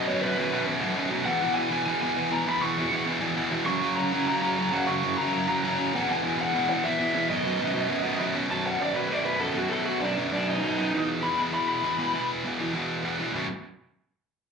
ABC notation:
X:1
M:4/4
L:1/8
Q:1/4=199
K:B
V:1 name="Overdriven electric guitar"
c B3 z4 | f2 g2 g g2 a | b c'3 z4 | c'2 a2 a a2 f |
c'2 a2 a a2 f | g2 f2 f e3 | d6- d z | =a f =d B d B =A F |
=A F =D z D ^D3- | D z b z b b3- | b z6 z | z8 |]
V:2 name="Distorted electric guitar" clef=bass
[B,,,F,,B,,] [B,,,F,,B,,] [B,,,F,,B,,] [B,,,F,,B,,] [B,,,F,,B,,] [B,,,F,,B,,] [B,,,F,,B,,] [B,,,F,,B,,] | [E,,B,,E,] [E,,B,,E,] [E,,B,,E,] [E,,B,,E,] [E,,B,,E,] [E,,B,,E,] [E,,B,,E,] [E,,B,,E,] | [E,,B,,E,] [E,,B,,E,] [E,,B,,E,] [E,,B,,E,] [E,,B,,E,] [E,,B,,E,] [E,,B,,E,] [E,,B,,E,] | [F,,C,F,] [F,,C,F,] [F,,C,F,] [F,,C,F,] [F,,C,F,] [F,,C,F,] [F,,C,F,] [F,,C,F,] |
[F,,C,F,] [F,,C,F,] [F,,C,F,] [F,,C,F,] [F,,C,F,] [F,,C,F,] [F,,C,F,] [E,,B,,E,] | [E,,B,,E,] [E,,B,,E,] [E,,B,,E,] [E,,B,,E,] [E,,B,,E,] [E,,B,,E,] [E,,B,,E,] [E,,B,,E,] | [B,,,F,,B,,] [B,,,F,,B,,] [B,,,F,,B,,] [B,,,F,,B,,] [B,,,F,,B,,] [B,,,F,,B,,] [B,,,F,,B,,] [B,,,F,,B,,] | [B,,,F,,B,,]2 [B,,,F,,B,,] [B,,,F,,B,,] [B,,,F,,B,,]2 [B,,,F,,B,,] [B,,,F,,B,,] |
[B,,,F,,B,,]2 [B,,,F,,B,,] [B,,,F,,B,,] [B,,,F,,B,,]2 [B,,,F,,B,,] [B,,,F,,B,,] | [E,,B,,E,]2 [E,,B,,E,] [E,,B,,E,] [E,,B,,E,]2 [E,,B,,E,] [E,,B,,E,] | [E,,B,,E,]2 [E,,B,,E,] [E,,B,,E,] [E,,B,,E,]2 [E,,B,,E,] [E,,B,,E,] | [B,,,F,,B,,] z6 z |]